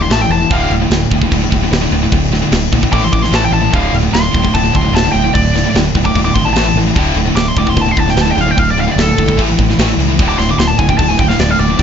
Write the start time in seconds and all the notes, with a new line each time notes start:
0.01 D2 A2 C6
0.09 A1 A2 E3 A3 A5, snare, crash
0.21 A2 E3 G5
0.28 E1 A2 E3 A5, crash
0.41 A2 E3
0.50 D1 D2 A2 D3 F5, kick, crash
0.70 D1 D2 A2, crash
0.82 D2 A2
0.90 D1 D2 A2, snare, crash
1.11 D1 D2 A2, kick, crash
1.22 D2 A2, kick
1.32 D1 D2 A2, kick, crash
1.43 D2 A2
1.52 D1 D2 A2, kick, crash
1.63 D2 A2
1.70 D1 D2 A2, snare, crash
1.82 D2 A2
1.91 D1 D2 A2, crash
2.03 D2 A2
2.12 D1 D2 A2, kick, crash
2.33 D2 A2, snare, crash
2.42 D2 A2
2.51 D1 D2 A2, snare, crash
2.72 A#1 D2 A2, kick, crash
2.83 D2 A2, kick
2.92 A1 A2 E3 A3 D6, kick, crash
3.03 A2 E3 C6
3.13 A1 A2 E3 D6, kick, crash
3.22 A2 E3 C6, snare
3.31 A1 A2 E3 A3 A5, snare, crash
3.42 A2 E3 G5
3.51 A1 A2 E3 A5, crash
3.62 A2 E3
3.72 D1 D2 A2 D3 F5, kick, crash
3.92 D1 D2 A2, crash
4.03 D2 A2
4.13 D1 D2 A2 C6, snare, crash
4.34 D1 D2 A2, kick, crash
4.44 D2 A2, kick
4.54 D1 D2 A2 A5, kick, crash
4.64 D2 A2
4.73 D1 D2 A2 C6, kick, crash
4.84 D2 A2
4.92 D1 D2 A2 A5, crash
4.97 snare
5.04 D2 A2
5.12 D1 D2 A2 G5, crash
5.24 D2 A2
5.33 D1 D2 A2 D5, kick, crash
5.55 D2 A2, snare, crash
5.65 D2 A2
5.74 D1 D2 A2, snare, crash
5.95 D1 D2 A2, kick, crash
6.05 D2 A2 D6, kick
6.15 D1 D2 A2, kick, crash
6.25 D2 A2 D6
6.34 G#1 D2 A2 C6, kick, crash
6.45 D2 A2 A5
6.54 A1 A2 E3 A3 A5, snare, crash
6.66 A2 E3
6.74 A1 A2 E3, crash
6.87 A2 E3
6.96 D1 D2 A2 D3, kick, crash
7.14 D1 D2 A2, crash
7.25 D2 A2
7.35 D1 D2 A2 D6, snare, crash
7.48 C6
7.56 D1 D2 A2 D6, kick, crash
7.66 D2 A2 C6, kick
7.76 D1 D2 A2, kick, crash
7.81 A5
7.86 D2 A2
7.91 C6
7.97 D1 D2 A2 A5, kick, crash
8.08 D2 A2 G5, snare
8.16 D1 D2 A2, snare, crash
8.21 A5
8.26 D2 A2
8.31 A2 G5
8.36 D1 D2, crash
8.41 F5
8.47 D2 A2
8.51 G5
8.57 D1 D2 A2 F5, kick, crash
8.71 D5
8.77 D2 A2 F5, crash
8.87 D2 A2
8.91 D5
8.96 D1 D2 A2, snare, crash
9.01 A4
9.18 G1 D2 A2, kick, crash
9.28 D2 A2, kick
9.38 A1 A2 E3 A3, kick, crash
9.49 A2 E3
9.58 A1 A2 E3, kick, crash
9.70 A2 E3, snare
9.78 A1 A2 E3 A3, snare, crash
9.90 A2 E3
9.97 C#2 A2 E3, crash
10.08 A2 E3
10.19 D1 D2 A2 D3, kick, crash
10.29 D6
10.38 D1 D2 A2 C6, snare, crash
10.49 D2 A2 D6
10.57 D1 D2 A2 C6, snare, crash
10.67 A5
10.78 D1 D2 A2 G#5, kick, crash
10.89 D2 A2 G5, kick
10.98 D1 D2 A2 A5, kick, crash
11.08 D2 A2 G#5
11.19 D1 D2 A2 G5, kick, crash
11.28 D2 A2 F5, snare
11.39 D1 D2 A2 D5, snare, crash
11.50 D2 A2 F5
11.58 D1 D2 A2 D5, crash
11.68 D2 A2
11.77 D1 D2 A2 D5, kick, crash